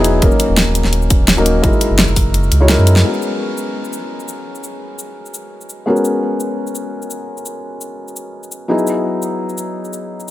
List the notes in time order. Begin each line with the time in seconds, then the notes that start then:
Already playing: E1 F#3 B3 D#4 E4 G#4
0.04 closed hi-hat, cabasa
0.21 D#1 F#3 A#3 C#4 D#4 A#4, kick, closed hi-hat
0.32 cabasa
0.40 closed hi-hat, cabasa
0.49 D#1
0.57 snare, closed hi-hat
0.67 D#1
0.75 closed hi-hat, cabasa
0.84 D#1, snare
0.93 closed hi-hat
1.02 cabasa
1.10 D#1, kick, closed hi-hat, cabasa
1.28 snare, closed hi-hat
1.37 D#1 F#3 A#3 C#4 D#4 A#4, cabasa
1.46 closed hi-hat, cabasa
1.62 F#1 G#3 D#4 E4 F#4 A#4, kick, closed hi-hat
1.73 cabasa
1.81 closed hi-hat, cabasa
1.90 F#1
1.99 snare, closed hi-hat
2.08 F#1, cabasa
2.16 kick, open hi-hat, cabasa
2.26 F#1
2.34 closed hi-hat
2.44 cabasa
2.52 C#2, closed hi-hat, cabasa
2.60 G#3 D#4 E4 F#4 C#5
2.69 G#3 D#4 E4 F#4 A#4, snare, closed hi-hat
2.79 F#2, cabasa
2.87 closed hi-hat, cabasa
2.96 snare
3.03 G#3 B3 C#4 F#4 A#4
3.14 cabasa
3.22 cabasa
3.57 cabasa
3.85 cabasa
3.93 cabasa
4.20 cabasa
4.28 cabasa
4.55 cabasa
4.64 cabasa
4.99 cabasa
5.26 cabasa
5.34 cabasa
5.61 cabasa
5.69 cabasa
5.86 G#3 B3 C#4 F#4 A#4
5.96 cabasa
6.05 cabasa
6.40 cabasa
6.67 cabasa
6.75 cabasa
7.02 cabasa
7.10 cabasa
7.37 cabasa
7.46 cabasa
7.81 cabasa
8.08 cabasa
8.16 cabasa
8.43 cabasa
8.52 cabasa
8.68 F#3 B3 D#4 E4 G#4
8.78 cabasa
8.87 cabasa
9.22 cabasa
9.49 cabasa
9.58 cabasa
9.85 cabasa
9.93 cabasa
10.20 cabasa